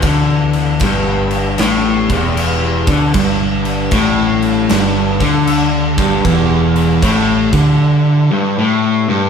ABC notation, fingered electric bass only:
X:1
M:4/4
L:1/8
Q:"Swing" 1/4=77
K:G
V:1 name="Fingered electric bass" clef=bass
D,,2 G,,,2 A,,, E,,,2 D,, | G,,,2 A,,,2 G,,, D,,2 G,,, | E,,,2 A,,, D,, z4 |]